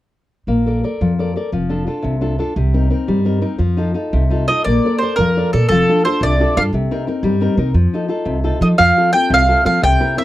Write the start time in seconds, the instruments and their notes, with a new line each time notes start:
0.47 upright bass A#1, nylon-string guitar A#3
0.66 nylon-string guitar A4 A#4 D5
0.84 nylon-string guitar A4 A#4 D5
1.01 upright bass F2, nylon-string guitar F3
1.19 nylon-string guitar A4 A#4 D5
1.36 nylon-string guitar A4 A#4 D5
1.52 upright bass F1, nylon-string guitar F3
1.69 nylon-string guitar D4 F4 A4
1.87 nylon-string guitar D4 F4 A4
2.03 upright bass C2, nylon-string guitar C3
2.21 nylon-string guitar D4 F4 A4
2.39 nylon-string guitar D4 F4 A4
2.56 upright bass C2, nylon-string guitar C3
2.74 nylon-string guitar C4 D#4 A#4
2.90 nylon-string guitar C4 D#4 A#4
3.08 upright bass G2, nylon-string guitar G3
3.25 nylon-string guitar C4 D#4 A#4
3.41 nylon-string guitar C4 D#4 A#4
3.58 upright bass F2, nylon-string guitar F3
3.77 nylon-string guitar D#4 F4 A4
3.94 nylon-string guitar D#4 F4 A4
4.13 upright bass C2, nylon-string guitar C3
4.30 nylon-string guitar D#4 F4 A4
4.48 nylon-string guitar D#4 F4 A4, mandolin D#5
4.64 upright bass A#1, nylon-string guitar A#3, mandolin D5
4.85 nylon-string guitar A4 A#4 D5
4.98 nylon-string guitar A4, mandolin C5
5.03 nylon-string guitar A#4 D5
5.16 upright bass F2, nylon-string guitar F3, mandolin A#4
5.37 nylon-string guitar A4 A#4 D5
5.53 upright bass A#2, mandolin A4, nylon-string guitar A4 A#4 D5
5.68 upright bass F1, nylon-string guitar F3, mandolin A4
5.89 nylon-string guitar D4 F4 A4
6.05 nylon-string guitar D4 F4 A4, mandolin C5
6.21 upright bass C2, nylon-string guitar C3, mandolin D5
6.40 nylon-string guitar D4 F4 A4
6.57 upright bass G2, nylon-string guitar D4 F4 A4, mandolin F5
6.73 upright bass C2, nylon-string guitar C3
6.91 nylon-string guitar C4 D#4 A#4
7.07 nylon-string guitar C4 D#4 A#4
7.23 upright bass G2, nylon-string guitar G3
7.41 nylon-string guitar C4 D#4 A#4
7.58 upright bass C3, nylon-string guitar C4 D#4 A#4
7.74 upright bass F2, nylon-string guitar F3
7.94 nylon-string guitar D#4 F4 A4
8.08 nylon-string guitar D#4 F4 A4
8.25 upright bass C2, nylon-string guitar C3
8.44 nylon-string guitar D#4 F4 A4
8.61 upright bass F3, nylon-string guitar D#4 F4 A4, mandolin D#5
8.78 upright bass F2, nylon-string guitar F3, mandolin F5
8.98 nylon-string guitar C4 F4 A4
9.13 nylon-string guitar C4 F4 A4, mandolin G5
9.30 upright bass C2, nylon-string guitar C3, mandolin F5
9.48 nylon-string guitar C4 F4 A4
9.65 upright bass F3, nylon-string guitar C4 F4 A4, mandolin F5
9.82 upright bass C2, nylon-string guitar C3, mandolin G5
10.00 nylon-string guitar C4 E4 A#4
10.17 nylon-string guitar C4 E4 A#4, mandolin E5